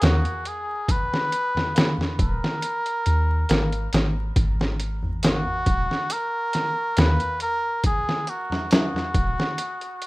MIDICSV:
0, 0, Header, 1, 5, 480
1, 0, Start_track
1, 0, Key_signature, 5, "minor"
1, 0, Tempo, 869565
1, 487, Time_signature, 4, 2, 24, 8
1, 5558, End_track
2, 0, Start_track
2, 0, Title_t, "Muted trumpet"
2, 0, Program_c, 0, 59
2, 20, Note_on_c, 0, 66, 87
2, 262, Note_on_c, 0, 68, 89
2, 270, Note_off_c, 0, 66, 0
2, 501, Note_on_c, 0, 71, 106
2, 509, Note_off_c, 0, 68, 0
2, 1071, Note_off_c, 0, 71, 0
2, 1217, Note_on_c, 0, 70, 98
2, 2150, Note_off_c, 0, 70, 0
2, 2899, Note_on_c, 0, 66, 93
2, 3379, Note_on_c, 0, 70, 105
2, 3388, Note_off_c, 0, 66, 0
2, 3859, Note_on_c, 0, 71, 103
2, 3867, Note_off_c, 0, 70, 0
2, 4093, Note_off_c, 0, 71, 0
2, 4098, Note_on_c, 0, 70, 106
2, 4316, Note_off_c, 0, 70, 0
2, 4339, Note_on_c, 0, 68, 101
2, 4578, Note_on_c, 0, 66, 85
2, 4586, Note_off_c, 0, 68, 0
2, 4812, Note_off_c, 0, 66, 0
2, 4820, Note_on_c, 0, 66, 88
2, 5558, Note_off_c, 0, 66, 0
2, 5558, End_track
3, 0, Start_track
3, 0, Title_t, "808-style bass"
3, 0, Program_c, 1, 38
3, 12, Note_on_c, 1, 39, 97
3, 123, Note_off_c, 1, 39, 0
3, 1212, Note_on_c, 1, 27, 105
3, 1322, Note_off_c, 1, 27, 0
3, 1692, Note_on_c, 1, 39, 108
3, 1903, Note_off_c, 1, 39, 0
3, 1931, Note_on_c, 1, 32, 77
3, 2142, Note_off_c, 1, 32, 0
3, 2171, Note_on_c, 1, 32, 81
3, 2382, Note_off_c, 1, 32, 0
3, 2409, Note_on_c, 1, 32, 93
3, 3107, Note_off_c, 1, 32, 0
3, 3128, Note_on_c, 1, 27, 101
3, 3241, Note_off_c, 1, 27, 0
3, 3850, Note_on_c, 1, 39, 93
3, 3961, Note_off_c, 1, 39, 0
3, 5050, Note_on_c, 1, 27, 97
3, 5162, Note_off_c, 1, 27, 0
3, 5558, End_track
4, 0, Start_track
4, 0, Title_t, "Tabla"
4, 7, Note_on_c, 9, 60, 67
4, 62, Note_off_c, 9, 60, 0
4, 132, Note_on_c, 9, 64, 59
4, 187, Note_off_c, 9, 64, 0
4, 855, Note_on_c, 9, 64, 61
4, 910, Note_off_c, 9, 64, 0
4, 966, Note_on_c, 9, 60, 71
4, 1021, Note_off_c, 9, 60, 0
4, 1091, Note_on_c, 9, 64, 76
4, 1147, Note_off_c, 9, 64, 0
4, 1929, Note_on_c, 9, 60, 73
4, 1984, Note_off_c, 9, 60, 0
4, 2775, Note_on_c, 9, 64, 78
4, 2830, Note_off_c, 9, 64, 0
4, 2891, Note_on_c, 9, 60, 62
4, 2946, Note_off_c, 9, 60, 0
4, 3011, Note_on_c, 9, 64, 73
4, 3067, Note_off_c, 9, 64, 0
4, 3848, Note_on_c, 9, 60, 76
4, 3903, Note_off_c, 9, 60, 0
4, 3974, Note_on_c, 9, 64, 58
4, 4029, Note_off_c, 9, 64, 0
4, 4692, Note_on_c, 9, 64, 78
4, 4747, Note_off_c, 9, 64, 0
4, 4805, Note_on_c, 9, 60, 64
4, 4861, Note_off_c, 9, 60, 0
4, 4936, Note_on_c, 9, 64, 72
4, 4991, Note_off_c, 9, 64, 0
4, 5558, End_track
5, 0, Start_track
5, 0, Title_t, "Drums"
5, 9, Note_on_c, 9, 42, 79
5, 18, Note_on_c, 9, 38, 109
5, 64, Note_off_c, 9, 42, 0
5, 73, Note_off_c, 9, 38, 0
5, 138, Note_on_c, 9, 42, 41
5, 193, Note_off_c, 9, 42, 0
5, 251, Note_on_c, 9, 42, 60
5, 306, Note_off_c, 9, 42, 0
5, 488, Note_on_c, 9, 36, 100
5, 490, Note_on_c, 9, 42, 85
5, 544, Note_off_c, 9, 36, 0
5, 545, Note_off_c, 9, 42, 0
5, 627, Note_on_c, 9, 38, 47
5, 682, Note_off_c, 9, 38, 0
5, 731, Note_on_c, 9, 42, 64
5, 786, Note_off_c, 9, 42, 0
5, 868, Note_on_c, 9, 38, 51
5, 923, Note_off_c, 9, 38, 0
5, 972, Note_on_c, 9, 42, 77
5, 981, Note_on_c, 9, 38, 113
5, 1027, Note_off_c, 9, 42, 0
5, 1036, Note_off_c, 9, 38, 0
5, 1109, Note_on_c, 9, 38, 38
5, 1164, Note_off_c, 9, 38, 0
5, 1209, Note_on_c, 9, 36, 92
5, 1210, Note_on_c, 9, 42, 64
5, 1264, Note_off_c, 9, 36, 0
5, 1265, Note_off_c, 9, 42, 0
5, 1348, Note_on_c, 9, 38, 52
5, 1403, Note_off_c, 9, 38, 0
5, 1449, Note_on_c, 9, 42, 80
5, 1504, Note_off_c, 9, 42, 0
5, 1578, Note_on_c, 9, 42, 38
5, 1633, Note_off_c, 9, 42, 0
5, 1688, Note_on_c, 9, 42, 63
5, 1744, Note_off_c, 9, 42, 0
5, 1927, Note_on_c, 9, 42, 81
5, 1936, Note_on_c, 9, 38, 99
5, 1982, Note_off_c, 9, 42, 0
5, 1991, Note_off_c, 9, 38, 0
5, 2056, Note_on_c, 9, 42, 45
5, 2111, Note_off_c, 9, 42, 0
5, 2167, Note_on_c, 9, 42, 72
5, 2177, Note_on_c, 9, 38, 94
5, 2223, Note_off_c, 9, 42, 0
5, 2232, Note_off_c, 9, 38, 0
5, 2407, Note_on_c, 9, 36, 106
5, 2407, Note_on_c, 9, 42, 79
5, 2462, Note_off_c, 9, 36, 0
5, 2463, Note_off_c, 9, 42, 0
5, 2544, Note_on_c, 9, 38, 52
5, 2600, Note_off_c, 9, 38, 0
5, 2647, Note_on_c, 9, 42, 64
5, 2703, Note_off_c, 9, 42, 0
5, 2886, Note_on_c, 9, 42, 85
5, 2895, Note_on_c, 9, 38, 104
5, 2941, Note_off_c, 9, 42, 0
5, 2950, Note_off_c, 9, 38, 0
5, 3125, Note_on_c, 9, 42, 65
5, 3127, Note_on_c, 9, 36, 90
5, 3181, Note_off_c, 9, 42, 0
5, 3182, Note_off_c, 9, 36, 0
5, 3263, Note_on_c, 9, 38, 34
5, 3318, Note_off_c, 9, 38, 0
5, 3366, Note_on_c, 9, 42, 86
5, 3422, Note_off_c, 9, 42, 0
5, 3606, Note_on_c, 9, 42, 68
5, 3615, Note_on_c, 9, 38, 44
5, 3661, Note_off_c, 9, 42, 0
5, 3670, Note_off_c, 9, 38, 0
5, 3846, Note_on_c, 9, 42, 83
5, 3855, Note_on_c, 9, 38, 105
5, 3901, Note_off_c, 9, 42, 0
5, 3910, Note_off_c, 9, 38, 0
5, 3974, Note_on_c, 9, 42, 44
5, 4029, Note_off_c, 9, 42, 0
5, 4085, Note_on_c, 9, 42, 61
5, 4140, Note_off_c, 9, 42, 0
5, 4325, Note_on_c, 9, 42, 85
5, 4327, Note_on_c, 9, 36, 101
5, 4381, Note_off_c, 9, 42, 0
5, 4382, Note_off_c, 9, 36, 0
5, 4465, Note_on_c, 9, 38, 45
5, 4520, Note_off_c, 9, 38, 0
5, 4566, Note_on_c, 9, 42, 66
5, 4622, Note_off_c, 9, 42, 0
5, 4705, Note_on_c, 9, 38, 47
5, 4760, Note_off_c, 9, 38, 0
5, 4807, Note_on_c, 9, 42, 85
5, 4817, Note_on_c, 9, 38, 109
5, 4862, Note_off_c, 9, 42, 0
5, 4872, Note_off_c, 9, 38, 0
5, 4947, Note_on_c, 9, 38, 40
5, 5002, Note_off_c, 9, 38, 0
5, 5048, Note_on_c, 9, 36, 88
5, 5048, Note_on_c, 9, 42, 62
5, 5103, Note_off_c, 9, 36, 0
5, 5103, Note_off_c, 9, 42, 0
5, 5186, Note_on_c, 9, 38, 48
5, 5242, Note_off_c, 9, 38, 0
5, 5289, Note_on_c, 9, 42, 80
5, 5344, Note_off_c, 9, 42, 0
5, 5417, Note_on_c, 9, 42, 40
5, 5472, Note_off_c, 9, 42, 0
5, 5529, Note_on_c, 9, 42, 63
5, 5558, Note_off_c, 9, 42, 0
5, 5558, End_track
0, 0, End_of_file